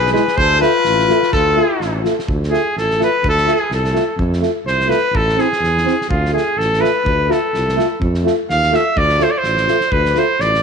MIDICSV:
0, 0, Header, 1, 7, 480
1, 0, Start_track
1, 0, Tempo, 476948
1, 377, Time_signature, 2, 2, 24, 8
1, 10695, End_track
2, 0, Start_track
2, 0, Title_t, "Trumpet"
2, 0, Program_c, 0, 56
2, 0, Note_on_c, 0, 71, 102
2, 109, Note_off_c, 0, 71, 0
2, 125, Note_on_c, 0, 71, 94
2, 367, Note_on_c, 0, 72, 115
2, 382, Note_off_c, 0, 71, 0
2, 604, Note_off_c, 0, 72, 0
2, 610, Note_on_c, 0, 71, 107
2, 1293, Note_off_c, 0, 71, 0
2, 1333, Note_on_c, 0, 69, 96
2, 2015, Note_off_c, 0, 69, 0
2, 2526, Note_on_c, 0, 68, 85
2, 2755, Note_off_c, 0, 68, 0
2, 2795, Note_on_c, 0, 69, 90
2, 3011, Note_off_c, 0, 69, 0
2, 3056, Note_on_c, 0, 71, 98
2, 3262, Note_off_c, 0, 71, 0
2, 3307, Note_on_c, 0, 69, 101
2, 3552, Note_on_c, 0, 68, 82
2, 3567, Note_off_c, 0, 69, 0
2, 3757, Note_off_c, 0, 68, 0
2, 3763, Note_on_c, 0, 69, 73
2, 4200, Note_off_c, 0, 69, 0
2, 4701, Note_on_c, 0, 72, 91
2, 4922, Note_on_c, 0, 71, 97
2, 4937, Note_off_c, 0, 72, 0
2, 5188, Note_on_c, 0, 69, 92
2, 5203, Note_off_c, 0, 71, 0
2, 5432, Note_on_c, 0, 68, 93
2, 5447, Note_off_c, 0, 69, 0
2, 6128, Note_off_c, 0, 68, 0
2, 6134, Note_on_c, 0, 65, 76
2, 6362, Note_off_c, 0, 65, 0
2, 6376, Note_on_c, 0, 68, 82
2, 6618, Note_on_c, 0, 69, 92
2, 6633, Note_off_c, 0, 68, 0
2, 6846, Note_on_c, 0, 71, 90
2, 6861, Note_off_c, 0, 69, 0
2, 7358, Note_on_c, 0, 69, 78
2, 7374, Note_off_c, 0, 71, 0
2, 8071, Note_off_c, 0, 69, 0
2, 8556, Note_on_c, 0, 77, 105
2, 8804, Note_on_c, 0, 76, 98
2, 8819, Note_off_c, 0, 77, 0
2, 9031, Note_on_c, 0, 74, 102
2, 9046, Note_off_c, 0, 76, 0
2, 9287, Note_on_c, 0, 72, 89
2, 9302, Note_off_c, 0, 74, 0
2, 9365, Note_on_c, 0, 74, 80
2, 9380, Note_off_c, 0, 72, 0
2, 9436, Note_on_c, 0, 72, 98
2, 9451, Note_off_c, 0, 74, 0
2, 9979, Note_on_c, 0, 71, 90
2, 9994, Note_off_c, 0, 72, 0
2, 10249, Note_on_c, 0, 72, 91
2, 10264, Note_off_c, 0, 71, 0
2, 10474, Note_on_c, 0, 74, 99
2, 10489, Note_off_c, 0, 72, 0
2, 10695, Note_off_c, 0, 74, 0
2, 10695, End_track
3, 0, Start_track
3, 0, Title_t, "Flugelhorn"
3, 0, Program_c, 1, 56
3, 0, Note_on_c, 1, 68, 75
3, 142, Note_off_c, 1, 68, 0
3, 154, Note_on_c, 1, 68, 74
3, 400, Note_on_c, 1, 69, 85
3, 415, Note_off_c, 1, 68, 0
3, 629, Note_off_c, 1, 69, 0
3, 647, Note_on_c, 1, 65, 87
3, 1312, Note_off_c, 1, 65, 0
3, 1365, Note_on_c, 1, 65, 75
3, 2031, Note_off_c, 1, 65, 0
3, 10695, End_track
4, 0, Start_track
4, 0, Title_t, "Euphonium"
4, 0, Program_c, 2, 58
4, 141, Note_on_c, 2, 64, 69
4, 236, Note_off_c, 2, 64, 0
4, 605, Note_on_c, 2, 65, 70
4, 703, Note_off_c, 2, 65, 0
4, 1099, Note_on_c, 2, 65, 73
4, 1195, Note_off_c, 2, 65, 0
4, 1581, Note_on_c, 2, 65, 63
4, 1676, Note_off_c, 2, 65, 0
4, 2046, Note_on_c, 2, 65, 59
4, 2144, Note_off_c, 2, 65, 0
4, 2523, Note_on_c, 2, 65, 61
4, 2622, Note_off_c, 2, 65, 0
4, 3004, Note_on_c, 2, 65, 66
4, 3103, Note_off_c, 2, 65, 0
4, 3484, Note_on_c, 2, 65, 66
4, 3583, Note_off_c, 2, 65, 0
4, 3968, Note_on_c, 2, 65, 63
4, 4066, Note_off_c, 2, 65, 0
4, 4446, Note_on_c, 2, 65, 60
4, 4546, Note_off_c, 2, 65, 0
4, 4904, Note_on_c, 2, 65, 56
4, 5008, Note_off_c, 2, 65, 0
4, 5406, Note_on_c, 2, 64, 61
4, 5505, Note_off_c, 2, 64, 0
4, 5898, Note_on_c, 2, 64, 54
4, 5995, Note_off_c, 2, 64, 0
4, 6363, Note_on_c, 2, 65, 57
4, 6463, Note_off_c, 2, 65, 0
4, 6851, Note_on_c, 2, 65, 65
4, 6950, Note_off_c, 2, 65, 0
4, 7339, Note_on_c, 2, 65, 77
4, 7436, Note_off_c, 2, 65, 0
4, 7834, Note_on_c, 2, 65, 67
4, 7928, Note_off_c, 2, 65, 0
4, 8310, Note_on_c, 2, 65, 80
4, 8405, Note_off_c, 2, 65, 0
4, 8786, Note_on_c, 2, 65, 70
4, 8881, Note_off_c, 2, 65, 0
4, 9257, Note_on_c, 2, 65, 66
4, 9354, Note_off_c, 2, 65, 0
4, 9733, Note_on_c, 2, 65, 58
4, 9830, Note_off_c, 2, 65, 0
4, 10217, Note_on_c, 2, 65, 69
4, 10313, Note_off_c, 2, 65, 0
4, 10695, End_track
5, 0, Start_track
5, 0, Title_t, "Trombone"
5, 0, Program_c, 3, 57
5, 123, Note_on_c, 3, 56, 67
5, 222, Note_off_c, 3, 56, 0
5, 615, Note_on_c, 3, 57, 70
5, 711, Note_off_c, 3, 57, 0
5, 1099, Note_on_c, 3, 57, 64
5, 1195, Note_off_c, 3, 57, 0
5, 1558, Note_on_c, 3, 57, 66
5, 1657, Note_off_c, 3, 57, 0
5, 2063, Note_on_c, 3, 57, 46
5, 2158, Note_off_c, 3, 57, 0
5, 2521, Note_on_c, 3, 57, 57
5, 2621, Note_off_c, 3, 57, 0
5, 3012, Note_on_c, 3, 57, 60
5, 3109, Note_off_c, 3, 57, 0
5, 3483, Note_on_c, 3, 57, 60
5, 3583, Note_off_c, 3, 57, 0
5, 3963, Note_on_c, 3, 57, 63
5, 4063, Note_off_c, 3, 57, 0
5, 4432, Note_on_c, 3, 57, 58
5, 4534, Note_off_c, 3, 57, 0
5, 4910, Note_on_c, 3, 57, 62
5, 5012, Note_off_c, 3, 57, 0
5, 5398, Note_on_c, 3, 60, 51
5, 5499, Note_off_c, 3, 60, 0
5, 5875, Note_on_c, 3, 60, 54
5, 5977, Note_off_c, 3, 60, 0
5, 6357, Note_on_c, 3, 57, 51
5, 6459, Note_off_c, 3, 57, 0
5, 6845, Note_on_c, 3, 57, 66
5, 6945, Note_off_c, 3, 57, 0
5, 7333, Note_on_c, 3, 57, 66
5, 7431, Note_off_c, 3, 57, 0
5, 7807, Note_on_c, 3, 57, 72
5, 7906, Note_off_c, 3, 57, 0
5, 8291, Note_on_c, 3, 57, 63
5, 8389, Note_off_c, 3, 57, 0
5, 8772, Note_on_c, 3, 57, 66
5, 8870, Note_off_c, 3, 57, 0
5, 9250, Note_on_c, 3, 57, 62
5, 9348, Note_off_c, 3, 57, 0
5, 9745, Note_on_c, 3, 57, 45
5, 9840, Note_off_c, 3, 57, 0
5, 10227, Note_on_c, 3, 57, 56
5, 10321, Note_off_c, 3, 57, 0
5, 10695, End_track
6, 0, Start_track
6, 0, Title_t, "Tuba"
6, 0, Program_c, 4, 58
6, 0, Note_on_c, 4, 35, 77
6, 159, Note_off_c, 4, 35, 0
6, 378, Note_on_c, 4, 38, 90
6, 642, Note_off_c, 4, 38, 0
6, 854, Note_on_c, 4, 33, 80
6, 1119, Note_off_c, 4, 33, 0
6, 1332, Note_on_c, 4, 38, 82
6, 1597, Note_off_c, 4, 38, 0
6, 1807, Note_on_c, 4, 33, 68
6, 2074, Note_off_c, 4, 33, 0
6, 2297, Note_on_c, 4, 38, 89
6, 2562, Note_off_c, 4, 38, 0
6, 2773, Note_on_c, 4, 33, 67
6, 3039, Note_off_c, 4, 33, 0
6, 3251, Note_on_c, 4, 38, 81
6, 3518, Note_off_c, 4, 38, 0
6, 3730, Note_on_c, 4, 36, 78
6, 3997, Note_off_c, 4, 36, 0
6, 4203, Note_on_c, 4, 41, 96
6, 4472, Note_off_c, 4, 41, 0
6, 4680, Note_on_c, 4, 36, 72
6, 4950, Note_off_c, 4, 36, 0
6, 5148, Note_on_c, 4, 33, 87
6, 5421, Note_off_c, 4, 33, 0
6, 5640, Note_on_c, 4, 40, 77
6, 5911, Note_off_c, 4, 40, 0
6, 6134, Note_on_c, 4, 38, 89
6, 6401, Note_off_c, 4, 38, 0
6, 6606, Note_on_c, 4, 33, 77
6, 6875, Note_off_c, 4, 33, 0
6, 7088, Note_on_c, 4, 38, 81
6, 7356, Note_off_c, 4, 38, 0
6, 7581, Note_on_c, 4, 36, 66
6, 7846, Note_off_c, 4, 36, 0
6, 8053, Note_on_c, 4, 41, 91
6, 8320, Note_off_c, 4, 41, 0
6, 8551, Note_on_c, 4, 39, 89
6, 8812, Note_off_c, 4, 39, 0
6, 9017, Note_on_c, 4, 38, 93
6, 9282, Note_off_c, 4, 38, 0
6, 9495, Note_on_c, 4, 33, 72
6, 9760, Note_off_c, 4, 33, 0
6, 9985, Note_on_c, 4, 38, 89
6, 10247, Note_off_c, 4, 38, 0
6, 10457, Note_on_c, 4, 33, 79
6, 10695, Note_off_c, 4, 33, 0
6, 10695, End_track
7, 0, Start_track
7, 0, Title_t, "Drums"
7, 63, Note_on_c, 9, 38, 24
7, 155, Note_off_c, 9, 38, 0
7, 155, Note_on_c, 9, 38, 32
7, 256, Note_off_c, 9, 38, 0
7, 277, Note_on_c, 9, 38, 28
7, 378, Note_off_c, 9, 38, 0
7, 379, Note_on_c, 9, 36, 86
7, 480, Note_off_c, 9, 36, 0
7, 625, Note_on_c, 9, 38, 27
7, 725, Note_off_c, 9, 38, 0
7, 850, Note_on_c, 9, 38, 30
7, 951, Note_off_c, 9, 38, 0
7, 998, Note_on_c, 9, 38, 22
7, 1099, Note_off_c, 9, 38, 0
7, 1101, Note_on_c, 9, 38, 30
7, 1202, Note_off_c, 9, 38, 0
7, 1234, Note_on_c, 9, 38, 24
7, 1335, Note_off_c, 9, 38, 0
7, 1340, Note_on_c, 9, 36, 88
7, 1441, Note_off_c, 9, 36, 0
7, 1825, Note_on_c, 9, 38, 29
7, 1925, Note_off_c, 9, 38, 0
7, 2062, Note_on_c, 9, 38, 32
7, 2163, Note_off_c, 9, 38, 0
7, 2205, Note_on_c, 9, 38, 27
7, 2299, Note_on_c, 9, 36, 79
7, 2305, Note_off_c, 9, 38, 0
7, 2400, Note_off_c, 9, 36, 0
7, 2449, Note_on_c, 9, 38, 22
7, 2550, Note_off_c, 9, 38, 0
7, 2552, Note_on_c, 9, 38, 27
7, 2653, Note_off_c, 9, 38, 0
7, 2793, Note_on_c, 9, 38, 24
7, 2894, Note_off_c, 9, 38, 0
7, 2924, Note_on_c, 9, 38, 23
7, 3024, Note_off_c, 9, 38, 0
7, 3030, Note_on_c, 9, 38, 28
7, 3131, Note_off_c, 9, 38, 0
7, 3263, Note_on_c, 9, 36, 94
7, 3364, Note_off_c, 9, 36, 0
7, 3396, Note_on_c, 9, 38, 26
7, 3496, Note_off_c, 9, 38, 0
7, 3496, Note_on_c, 9, 38, 33
7, 3596, Note_off_c, 9, 38, 0
7, 3737, Note_on_c, 9, 38, 31
7, 3837, Note_off_c, 9, 38, 0
7, 3867, Note_on_c, 9, 38, 26
7, 3968, Note_off_c, 9, 38, 0
7, 3979, Note_on_c, 9, 38, 31
7, 4079, Note_off_c, 9, 38, 0
7, 4218, Note_on_c, 9, 36, 78
7, 4318, Note_off_c, 9, 36, 0
7, 4357, Note_on_c, 9, 38, 23
7, 4454, Note_off_c, 9, 38, 0
7, 4454, Note_on_c, 9, 38, 30
7, 4555, Note_off_c, 9, 38, 0
7, 4702, Note_on_c, 9, 38, 28
7, 4803, Note_off_c, 9, 38, 0
7, 4830, Note_on_c, 9, 38, 22
7, 4931, Note_off_c, 9, 38, 0
7, 4936, Note_on_c, 9, 38, 33
7, 5037, Note_off_c, 9, 38, 0
7, 5180, Note_on_c, 9, 36, 86
7, 5281, Note_off_c, 9, 36, 0
7, 5321, Note_on_c, 9, 38, 26
7, 5418, Note_off_c, 9, 38, 0
7, 5418, Note_on_c, 9, 38, 27
7, 5518, Note_off_c, 9, 38, 0
7, 5559, Note_on_c, 9, 38, 25
7, 5660, Note_off_c, 9, 38, 0
7, 5674, Note_on_c, 9, 38, 27
7, 5774, Note_off_c, 9, 38, 0
7, 5813, Note_on_c, 9, 38, 25
7, 5913, Note_off_c, 9, 38, 0
7, 5913, Note_on_c, 9, 38, 29
7, 6013, Note_off_c, 9, 38, 0
7, 6051, Note_on_c, 9, 38, 21
7, 6145, Note_on_c, 9, 36, 84
7, 6152, Note_off_c, 9, 38, 0
7, 6245, Note_off_c, 9, 36, 0
7, 6294, Note_on_c, 9, 38, 20
7, 6395, Note_off_c, 9, 38, 0
7, 6413, Note_on_c, 9, 38, 27
7, 6514, Note_off_c, 9, 38, 0
7, 6645, Note_on_c, 9, 38, 26
7, 6745, Note_off_c, 9, 38, 0
7, 6777, Note_on_c, 9, 38, 24
7, 6877, Note_off_c, 9, 38, 0
7, 6886, Note_on_c, 9, 38, 30
7, 6986, Note_off_c, 9, 38, 0
7, 7108, Note_on_c, 9, 36, 83
7, 7209, Note_off_c, 9, 36, 0
7, 7358, Note_on_c, 9, 38, 28
7, 7459, Note_off_c, 9, 38, 0
7, 7590, Note_on_c, 9, 38, 28
7, 7691, Note_off_c, 9, 38, 0
7, 7735, Note_on_c, 9, 38, 23
7, 7836, Note_off_c, 9, 38, 0
7, 7837, Note_on_c, 9, 38, 28
7, 7938, Note_off_c, 9, 38, 0
7, 8068, Note_on_c, 9, 36, 73
7, 8169, Note_off_c, 9, 36, 0
7, 8196, Note_on_c, 9, 38, 23
7, 8297, Note_off_c, 9, 38, 0
7, 8321, Note_on_c, 9, 38, 28
7, 8421, Note_off_c, 9, 38, 0
7, 8550, Note_on_c, 9, 38, 26
7, 8651, Note_off_c, 9, 38, 0
7, 8683, Note_on_c, 9, 38, 21
7, 8783, Note_off_c, 9, 38, 0
7, 8793, Note_on_c, 9, 38, 27
7, 8894, Note_off_c, 9, 38, 0
7, 9026, Note_on_c, 9, 36, 74
7, 9127, Note_off_c, 9, 36, 0
7, 9151, Note_on_c, 9, 38, 23
7, 9251, Note_off_c, 9, 38, 0
7, 9255, Note_on_c, 9, 38, 27
7, 9355, Note_off_c, 9, 38, 0
7, 9496, Note_on_c, 9, 38, 29
7, 9596, Note_off_c, 9, 38, 0
7, 9630, Note_on_c, 9, 38, 23
7, 9731, Note_off_c, 9, 38, 0
7, 9739, Note_on_c, 9, 38, 31
7, 9839, Note_off_c, 9, 38, 0
7, 9866, Note_on_c, 9, 38, 24
7, 9967, Note_off_c, 9, 38, 0
7, 9982, Note_on_c, 9, 36, 71
7, 10082, Note_off_c, 9, 36, 0
7, 10118, Note_on_c, 9, 38, 26
7, 10214, Note_off_c, 9, 38, 0
7, 10214, Note_on_c, 9, 38, 31
7, 10315, Note_off_c, 9, 38, 0
7, 10467, Note_on_c, 9, 38, 29
7, 10568, Note_off_c, 9, 38, 0
7, 10609, Note_on_c, 9, 38, 28
7, 10695, Note_off_c, 9, 38, 0
7, 10695, End_track
0, 0, End_of_file